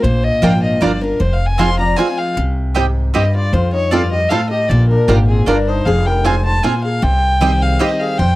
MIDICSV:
0, 0, Header, 1, 7, 480
1, 0, Start_track
1, 0, Key_signature, -3, "minor"
1, 0, Tempo, 388350
1, 44, Time_signature, 3, 2, 24, 8
1, 10327, End_track
2, 0, Start_track
2, 0, Title_t, "Fiddle"
2, 0, Program_c, 0, 110
2, 33, Note_on_c, 0, 72, 88
2, 292, Note_on_c, 0, 75, 102
2, 310, Note_off_c, 0, 72, 0
2, 538, Note_on_c, 0, 79, 98
2, 557, Note_off_c, 0, 75, 0
2, 770, Note_off_c, 0, 79, 0
2, 778, Note_on_c, 0, 75, 92
2, 1016, Note_on_c, 0, 74, 82
2, 1035, Note_off_c, 0, 75, 0
2, 1257, Note_on_c, 0, 70, 87
2, 1276, Note_off_c, 0, 74, 0
2, 1486, Note_on_c, 0, 72, 81
2, 1505, Note_off_c, 0, 70, 0
2, 1639, Note_on_c, 0, 77, 84
2, 1658, Note_off_c, 0, 72, 0
2, 1803, Note_on_c, 0, 80, 96
2, 1822, Note_off_c, 0, 77, 0
2, 1971, Note_on_c, 0, 84, 103
2, 1989, Note_off_c, 0, 80, 0
2, 2207, Note_off_c, 0, 84, 0
2, 2215, Note_on_c, 0, 82, 96
2, 2432, Note_on_c, 0, 80, 89
2, 2451, Note_off_c, 0, 82, 0
2, 2698, Note_on_c, 0, 77, 91
2, 2717, Note_off_c, 0, 80, 0
2, 2927, Note_off_c, 0, 77, 0
2, 3889, Note_on_c, 0, 75, 80
2, 4123, Note_off_c, 0, 75, 0
2, 4148, Note_on_c, 0, 74, 86
2, 4365, Note_on_c, 0, 72, 87
2, 4383, Note_off_c, 0, 74, 0
2, 4603, Note_off_c, 0, 72, 0
2, 4610, Note_on_c, 0, 73, 100
2, 4841, Note_on_c, 0, 74, 89
2, 4860, Note_off_c, 0, 73, 0
2, 5077, Note_off_c, 0, 74, 0
2, 5084, Note_on_c, 0, 75, 87
2, 5304, Note_on_c, 0, 77, 90
2, 5322, Note_off_c, 0, 75, 0
2, 5548, Note_off_c, 0, 77, 0
2, 5555, Note_on_c, 0, 75, 99
2, 5797, Note_on_c, 0, 74, 85
2, 5815, Note_off_c, 0, 75, 0
2, 6032, Note_off_c, 0, 74, 0
2, 6039, Note_on_c, 0, 70, 90
2, 6281, Note_on_c, 0, 67, 86
2, 6299, Note_off_c, 0, 70, 0
2, 6519, Note_off_c, 0, 67, 0
2, 6527, Note_on_c, 0, 68, 85
2, 6765, Note_on_c, 0, 70, 75
2, 6783, Note_off_c, 0, 68, 0
2, 7018, Note_on_c, 0, 72, 83
2, 7036, Note_off_c, 0, 70, 0
2, 7236, Note_on_c, 0, 77, 91
2, 7255, Note_off_c, 0, 72, 0
2, 7492, Note_on_c, 0, 79, 91
2, 7511, Note_off_c, 0, 77, 0
2, 7732, Note_on_c, 0, 80, 85
2, 7750, Note_off_c, 0, 79, 0
2, 7965, Note_off_c, 0, 80, 0
2, 7972, Note_on_c, 0, 81, 101
2, 8199, Note_on_c, 0, 80, 87
2, 8218, Note_off_c, 0, 81, 0
2, 8445, Note_off_c, 0, 80, 0
2, 8452, Note_on_c, 0, 77, 92
2, 8685, Note_on_c, 0, 79, 110
2, 8704, Note_off_c, 0, 77, 0
2, 9418, Note_on_c, 0, 77, 96
2, 9436, Note_off_c, 0, 79, 0
2, 9649, Note_on_c, 0, 75, 81
2, 9668, Note_off_c, 0, 77, 0
2, 9885, Note_on_c, 0, 77, 88
2, 9904, Note_off_c, 0, 75, 0
2, 10113, Note_on_c, 0, 79, 102
2, 10131, Note_off_c, 0, 77, 0
2, 10327, Note_off_c, 0, 79, 0
2, 10327, End_track
3, 0, Start_track
3, 0, Title_t, "Mandolin"
3, 0, Program_c, 1, 25
3, 519, Note_on_c, 1, 58, 91
3, 526, Note_on_c, 1, 65, 104
3, 530, Note_on_c, 1, 74, 89
3, 535, Note_on_c, 1, 82, 108
3, 639, Note_off_c, 1, 58, 0
3, 643, Note_off_c, 1, 65, 0
3, 645, Note_off_c, 1, 74, 0
3, 647, Note_off_c, 1, 82, 0
3, 998, Note_on_c, 1, 58, 87
3, 1009, Note_on_c, 1, 65, 93
3, 1011, Note_on_c, 1, 74, 99
3, 1015, Note_on_c, 1, 82, 95
3, 1119, Note_off_c, 1, 58, 0
3, 1125, Note_off_c, 1, 65, 0
3, 1126, Note_off_c, 1, 74, 0
3, 1128, Note_off_c, 1, 82, 0
3, 1951, Note_on_c, 1, 60, 95
3, 1960, Note_on_c, 1, 65, 93
3, 1963, Note_on_c, 1, 72, 93
3, 1968, Note_on_c, 1, 80, 99
3, 2076, Note_off_c, 1, 60, 0
3, 2080, Note_off_c, 1, 65, 0
3, 2082, Note_off_c, 1, 72, 0
3, 2084, Note_off_c, 1, 80, 0
3, 2426, Note_on_c, 1, 60, 96
3, 2430, Note_on_c, 1, 65, 88
3, 2439, Note_on_c, 1, 72, 92
3, 2441, Note_on_c, 1, 80, 96
3, 2554, Note_off_c, 1, 60, 0
3, 2556, Note_off_c, 1, 65, 0
3, 2560, Note_off_c, 1, 72, 0
3, 2561, Note_off_c, 1, 80, 0
3, 3393, Note_on_c, 1, 60, 92
3, 3397, Note_on_c, 1, 67, 100
3, 3403, Note_on_c, 1, 75, 106
3, 3409, Note_on_c, 1, 79, 106
3, 3518, Note_off_c, 1, 60, 0
3, 3520, Note_off_c, 1, 67, 0
3, 3523, Note_off_c, 1, 75, 0
3, 3526, Note_off_c, 1, 79, 0
3, 3878, Note_on_c, 1, 60, 97
3, 3882, Note_on_c, 1, 67, 99
3, 3888, Note_on_c, 1, 75, 96
3, 3891, Note_on_c, 1, 79, 98
3, 4000, Note_off_c, 1, 60, 0
3, 4002, Note_off_c, 1, 67, 0
3, 4005, Note_off_c, 1, 75, 0
3, 4006, Note_off_c, 1, 79, 0
3, 4834, Note_on_c, 1, 60, 96
3, 4840, Note_on_c, 1, 65, 88
3, 4844, Note_on_c, 1, 72, 108
3, 4847, Note_on_c, 1, 81, 104
3, 4958, Note_off_c, 1, 60, 0
3, 4962, Note_off_c, 1, 65, 0
3, 4963, Note_off_c, 1, 72, 0
3, 4965, Note_off_c, 1, 81, 0
3, 5317, Note_on_c, 1, 60, 92
3, 5321, Note_on_c, 1, 65, 101
3, 5323, Note_on_c, 1, 72, 104
3, 5329, Note_on_c, 1, 81, 94
3, 5440, Note_off_c, 1, 60, 0
3, 5442, Note_off_c, 1, 65, 0
3, 5443, Note_off_c, 1, 72, 0
3, 5446, Note_off_c, 1, 81, 0
3, 6276, Note_on_c, 1, 58, 91
3, 6280, Note_on_c, 1, 65, 99
3, 6285, Note_on_c, 1, 74, 98
3, 6287, Note_on_c, 1, 82, 106
3, 6400, Note_off_c, 1, 58, 0
3, 6401, Note_off_c, 1, 65, 0
3, 6404, Note_off_c, 1, 74, 0
3, 6405, Note_off_c, 1, 82, 0
3, 6751, Note_on_c, 1, 58, 90
3, 6758, Note_on_c, 1, 65, 99
3, 6764, Note_on_c, 1, 74, 102
3, 6768, Note_on_c, 1, 82, 105
3, 6877, Note_off_c, 1, 58, 0
3, 6880, Note_off_c, 1, 65, 0
3, 6883, Note_off_c, 1, 74, 0
3, 6885, Note_off_c, 1, 82, 0
3, 7717, Note_on_c, 1, 60, 92
3, 7721, Note_on_c, 1, 65, 101
3, 7725, Note_on_c, 1, 72, 101
3, 7729, Note_on_c, 1, 80, 104
3, 7839, Note_off_c, 1, 60, 0
3, 7841, Note_off_c, 1, 65, 0
3, 7843, Note_off_c, 1, 72, 0
3, 7845, Note_off_c, 1, 80, 0
3, 8197, Note_on_c, 1, 60, 86
3, 8200, Note_on_c, 1, 65, 100
3, 8204, Note_on_c, 1, 72, 101
3, 8210, Note_on_c, 1, 80, 101
3, 8319, Note_off_c, 1, 60, 0
3, 8321, Note_off_c, 1, 65, 0
3, 8323, Note_off_c, 1, 72, 0
3, 8326, Note_off_c, 1, 80, 0
3, 9157, Note_on_c, 1, 60, 100
3, 9161, Note_on_c, 1, 67, 95
3, 9163, Note_on_c, 1, 75, 99
3, 9171, Note_on_c, 1, 79, 106
3, 9279, Note_off_c, 1, 60, 0
3, 9281, Note_off_c, 1, 67, 0
3, 9281, Note_off_c, 1, 75, 0
3, 9286, Note_off_c, 1, 79, 0
3, 9631, Note_on_c, 1, 60, 88
3, 9636, Note_on_c, 1, 67, 97
3, 9642, Note_on_c, 1, 75, 99
3, 9646, Note_on_c, 1, 79, 97
3, 9755, Note_off_c, 1, 60, 0
3, 9758, Note_off_c, 1, 67, 0
3, 9761, Note_off_c, 1, 75, 0
3, 9763, Note_off_c, 1, 79, 0
3, 10327, End_track
4, 0, Start_track
4, 0, Title_t, "Resonator guitar played with a steel bar"
4, 0, Program_c, 2, 25
4, 1968, Note_on_c, 2, 77, 82
4, 2219, Note_off_c, 2, 77, 0
4, 2220, Note_on_c, 2, 74, 75
4, 2444, Note_off_c, 2, 74, 0
4, 2444, Note_on_c, 2, 72, 74
4, 2696, Note_off_c, 2, 72, 0
4, 2696, Note_on_c, 2, 68, 82
4, 2926, Note_off_c, 2, 68, 0
4, 3886, Note_on_c, 2, 67, 64
4, 4122, Note_off_c, 2, 67, 0
4, 4135, Note_on_c, 2, 65, 76
4, 4349, Note_off_c, 2, 65, 0
4, 4368, Note_on_c, 2, 65, 68
4, 4612, Note_off_c, 2, 65, 0
4, 4617, Note_on_c, 2, 63, 78
4, 4852, Note_off_c, 2, 63, 0
4, 4852, Note_on_c, 2, 65, 73
4, 5092, Note_on_c, 2, 67, 71
4, 5102, Note_off_c, 2, 65, 0
4, 5319, Note_off_c, 2, 67, 0
4, 5319, Note_on_c, 2, 69, 76
4, 5567, Note_off_c, 2, 69, 0
4, 5572, Note_on_c, 2, 67, 83
4, 5811, Note_off_c, 2, 67, 0
4, 5811, Note_on_c, 2, 65, 68
4, 6059, Note_off_c, 2, 65, 0
4, 6064, Note_on_c, 2, 62, 68
4, 6274, Note_off_c, 2, 62, 0
4, 6295, Note_on_c, 2, 58, 70
4, 6544, Note_off_c, 2, 58, 0
4, 6553, Note_on_c, 2, 60, 74
4, 6784, Note_off_c, 2, 60, 0
4, 6784, Note_on_c, 2, 62, 64
4, 7024, Note_off_c, 2, 62, 0
4, 7024, Note_on_c, 2, 63, 76
4, 7251, Note_off_c, 2, 63, 0
4, 7251, Note_on_c, 2, 68, 70
4, 7506, Note_off_c, 2, 68, 0
4, 7506, Note_on_c, 2, 70, 79
4, 7731, Note_off_c, 2, 70, 0
4, 7731, Note_on_c, 2, 72, 72
4, 7965, Note_off_c, 2, 72, 0
4, 7980, Note_on_c, 2, 72, 88
4, 8191, Note_off_c, 2, 72, 0
4, 8206, Note_on_c, 2, 72, 75
4, 8458, Note_off_c, 2, 72, 0
4, 8463, Note_on_c, 2, 68, 79
4, 8673, Note_off_c, 2, 68, 0
4, 8693, Note_on_c, 2, 72, 86
4, 9419, Note_off_c, 2, 72, 0
4, 9419, Note_on_c, 2, 68, 78
4, 9657, Note_off_c, 2, 68, 0
4, 9657, Note_on_c, 2, 67, 61
4, 9900, Note_off_c, 2, 67, 0
4, 9900, Note_on_c, 2, 68, 74
4, 10123, Note_off_c, 2, 68, 0
4, 10123, Note_on_c, 2, 72, 85
4, 10327, Note_off_c, 2, 72, 0
4, 10327, End_track
5, 0, Start_track
5, 0, Title_t, "Five-string banjo"
5, 0, Program_c, 3, 105
5, 534, Note_on_c, 3, 62, 64
5, 544, Note_on_c, 3, 70, 66
5, 546, Note_on_c, 3, 65, 68
5, 641, Note_off_c, 3, 62, 0
5, 644, Note_off_c, 3, 65, 0
5, 645, Note_off_c, 3, 70, 0
5, 1011, Note_on_c, 3, 62, 66
5, 1017, Note_on_c, 3, 65, 65
5, 1022, Note_on_c, 3, 70, 67
5, 1120, Note_off_c, 3, 62, 0
5, 1122, Note_off_c, 3, 65, 0
5, 1125, Note_off_c, 3, 70, 0
5, 1974, Note_on_c, 3, 60, 61
5, 1977, Note_on_c, 3, 65, 64
5, 1986, Note_on_c, 3, 68, 63
5, 2081, Note_off_c, 3, 60, 0
5, 2084, Note_off_c, 3, 65, 0
5, 2086, Note_off_c, 3, 68, 0
5, 2449, Note_on_c, 3, 60, 61
5, 2456, Note_on_c, 3, 68, 59
5, 2457, Note_on_c, 3, 65, 62
5, 2560, Note_off_c, 3, 60, 0
5, 2561, Note_off_c, 3, 65, 0
5, 2562, Note_off_c, 3, 68, 0
5, 3412, Note_on_c, 3, 60, 65
5, 3420, Note_on_c, 3, 67, 65
5, 3423, Note_off_c, 3, 67, 0
5, 3423, Note_on_c, 3, 67, 65
5, 3447, Note_off_c, 3, 67, 0
5, 3522, Note_off_c, 3, 60, 0
5, 3892, Note_on_c, 3, 60, 65
5, 3898, Note_on_c, 3, 67, 65
5, 3902, Note_off_c, 3, 67, 0
5, 3902, Note_on_c, 3, 67, 60
5, 4001, Note_off_c, 3, 60, 0
5, 4006, Note_off_c, 3, 67, 0
5, 4855, Note_on_c, 3, 60, 69
5, 4862, Note_on_c, 3, 65, 70
5, 4862, Note_on_c, 3, 69, 68
5, 4963, Note_off_c, 3, 60, 0
5, 4965, Note_off_c, 3, 65, 0
5, 4966, Note_off_c, 3, 69, 0
5, 5332, Note_on_c, 3, 60, 64
5, 5339, Note_on_c, 3, 65, 66
5, 5342, Note_on_c, 3, 69, 66
5, 5441, Note_off_c, 3, 60, 0
5, 5443, Note_off_c, 3, 65, 0
5, 5446, Note_off_c, 3, 69, 0
5, 6290, Note_on_c, 3, 62, 61
5, 6296, Note_on_c, 3, 65, 70
5, 6298, Note_on_c, 3, 70, 67
5, 6400, Note_off_c, 3, 62, 0
5, 6402, Note_off_c, 3, 65, 0
5, 6404, Note_off_c, 3, 70, 0
5, 6768, Note_on_c, 3, 62, 62
5, 6776, Note_on_c, 3, 70, 65
5, 6777, Note_on_c, 3, 65, 64
5, 6879, Note_off_c, 3, 62, 0
5, 6882, Note_off_c, 3, 65, 0
5, 6883, Note_off_c, 3, 70, 0
5, 7726, Note_on_c, 3, 60, 63
5, 7730, Note_on_c, 3, 65, 65
5, 7734, Note_on_c, 3, 68, 63
5, 7837, Note_off_c, 3, 60, 0
5, 7840, Note_off_c, 3, 65, 0
5, 7841, Note_off_c, 3, 68, 0
5, 8210, Note_on_c, 3, 60, 65
5, 8217, Note_on_c, 3, 68, 64
5, 8218, Note_on_c, 3, 65, 68
5, 8320, Note_off_c, 3, 60, 0
5, 8321, Note_off_c, 3, 65, 0
5, 8323, Note_off_c, 3, 68, 0
5, 9165, Note_on_c, 3, 60, 65
5, 9172, Note_on_c, 3, 67, 64
5, 9175, Note_off_c, 3, 67, 0
5, 9175, Note_on_c, 3, 67, 65
5, 9277, Note_off_c, 3, 60, 0
5, 9281, Note_off_c, 3, 67, 0
5, 9645, Note_on_c, 3, 60, 66
5, 9654, Note_on_c, 3, 67, 67
5, 9655, Note_off_c, 3, 67, 0
5, 9655, Note_on_c, 3, 67, 60
5, 9679, Note_off_c, 3, 67, 0
5, 9756, Note_off_c, 3, 60, 0
5, 10327, End_track
6, 0, Start_track
6, 0, Title_t, "Steel-string acoustic guitar"
6, 0, Program_c, 4, 25
6, 52, Note_on_c, 4, 46, 91
6, 517, Note_on_c, 4, 53, 87
6, 524, Note_on_c, 4, 58, 94
6, 530, Note_on_c, 4, 62, 93
6, 539, Note_on_c, 4, 65, 102
6, 964, Note_off_c, 4, 46, 0
6, 978, Note_off_c, 4, 53, 0
6, 982, Note_off_c, 4, 58, 0
6, 985, Note_off_c, 4, 62, 0
6, 990, Note_off_c, 4, 65, 0
6, 997, Note_on_c, 4, 53, 81
6, 1007, Note_on_c, 4, 58, 86
6, 1017, Note_on_c, 4, 62, 85
6, 1020, Note_on_c, 4, 65, 88
6, 1237, Note_off_c, 4, 65, 0
6, 1243, Note_off_c, 4, 53, 0
6, 1248, Note_off_c, 4, 58, 0
6, 1252, Note_on_c, 4, 65, 60
6, 1254, Note_off_c, 4, 62, 0
6, 1277, Note_on_c, 4, 62, 45
6, 1474, Note_off_c, 4, 65, 0
6, 1481, Note_on_c, 4, 41, 86
6, 1486, Note_off_c, 4, 62, 0
6, 1961, Note_on_c, 4, 53, 91
6, 1969, Note_on_c, 4, 56, 84
6, 1977, Note_on_c, 4, 60, 86
6, 1986, Note_on_c, 4, 65, 98
6, 2194, Note_off_c, 4, 65, 0
6, 2206, Note_off_c, 4, 53, 0
6, 2209, Note_on_c, 4, 65, 57
6, 2210, Note_off_c, 4, 56, 0
6, 2214, Note_off_c, 4, 60, 0
6, 2235, Note_on_c, 4, 60, 50
6, 2399, Note_off_c, 4, 41, 0
6, 2433, Note_off_c, 4, 65, 0
6, 2446, Note_off_c, 4, 60, 0
6, 2453, Note_on_c, 4, 53, 81
6, 2458, Note_on_c, 4, 56, 83
6, 2466, Note_on_c, 4, 60, 78
6, 2472, Note_on_c, 4, 65, 87
6, 2907, Note_off_c, 4, 53, 0
6, 2910, Note_off_c, 4, 56, 0
6, 2914, Note_off_c, 4, 60, 0
6, 2917, Note_off_c, 4, 65, 0
6, 2931, Note_on_c, 4, 48, 89
6, 3411, Note_on_c, 4, 44, 91
6, 3844, Note_off_c, 4, 48, 0
6, 3867, Note_off_c, 4, 44, 0
6, 3889, Note_on_c, 4, 43, 85
6, 4346, Note_off_c, 4, 43, 0
6, 4370, Note_on_c, 4, 41, 82
6, 4848, Note_off_c, 4, 41, 0
6, 4853, Note_on_c, 4, 43, 87
6, 5308, Note_off_c, 4, 43, 0
6, 5331, Note_on_c, 4, 45, 90
6, 5787, Note_off_c, 4, 45, 0
6, 5820, Note_on_c, 4, 46, 90
6, 6293, Note_on_c, 4, 44, 90
6, 6728, Note_off_c, 4, 46, 0
6, 6748, Note_off_c, 4, 44, 0
6, 6769, Note_on_c, 4, 43, 91
6, 7225, Note_off_c, 4, 43, 0
6, 7259, Note_on_c, 4, 41, 82
6, 7735, Note_off_c, 4, 41, 0
6, 7740, Note_on_c, 4, 44, 88
6, 8190, Note_off_c, 4, 44, 0
6, 8208, Note_on_c, 4, 46, 78
6, 8664, Note_off_c, 4, 46, 0
6, 8679, Note_on_c, 4, 48, 93
6, 9153, Note_on_c, 4, 51, 84
6, 9170, Note_on_c, 4, 55, 81
6, 9171, Note_on_c, 4, 60, 88
6, 9181, Note_on_c, 4, 67, 101
6, 9596, Note_off_c, 4, 48, 0
6, 9616, Note_off_c, 4, 51, 0
6, 9624, Note_off_c, 4, 55, 0
6, 9625, Note_off_c, 4, 60, 0
6, 9630, Note_off_c, 4, 67, 0
6, 9632, Note_on_c, 4, 51, 84
6, 9644, Note_on_c, 4, 55, 87
6, 9654, Note_on_c, 4, 60, 93
6, 9655, Note_on_c, 4, 67, 90
6, 10095, Note_off_c, 4, 51, 0
6, 10101, Note_off_c, 4, 55, 0
6, 10106, Note_off_c, 4, 60, 0
6, 10107, Note_off_c, 4, 67, 0
6, 10123, Note_on_c, 4, 41, 87
6, 10327, Note_off_c, 4, 41, 0
6, 10327, End_track
7, 0, Start_track
7, 0, Title_t, "Upright bass"
7, 0, Program_c, 5, 32
7, 44, Note_on_c, 5, 34, 102
7, 344, Note_off_c, 5, 34, 0
7, 527, Note_on_c, 5, 32, 79
7, 934, Note_off_c, 5, 32, 0
7, 1012, Note_on_c, 5, 31, 81
7, 1417, Note_off_c, 5, 31, 0
7, 1487, Note_on_c, 5, 29, 90
7, 2385, Note_off_c, 5, 29, 0
7, 2928, Note_on_c, 5, 36, 95
7, 3825, Note_off_c, 5, 36, 0
7, 4360, Note_on_c, 5, 41, 99
7, 5260, Note_off_c, 5, 41, 0
7, 5804, Note_on_c, 5, 34, 105
7, 6105, Note_off_c, 5, 34, 0
7, 6279, Note_on_c, 5, 32, 87
7, 6691, Note_off_c, 5, 32, 0
7, 6761, Note_on_c, 5, 31, 79
7, 7172, Note_off_c, 5, 31, 0
7, 7244, Note_on_c, 5, 29, 96
7, 8141, Note_off_c, 5, 29, 0
7, 8685, Note_on_c, 5, 36, 99
7, 9581, Note_off_c, 5, 36, 0
7, 10125, Note_on_c, 5, 41, 96
7, 10327, Note_off_c, 5, 41, 0
7, 10327, End_track
0, 0, End_of_file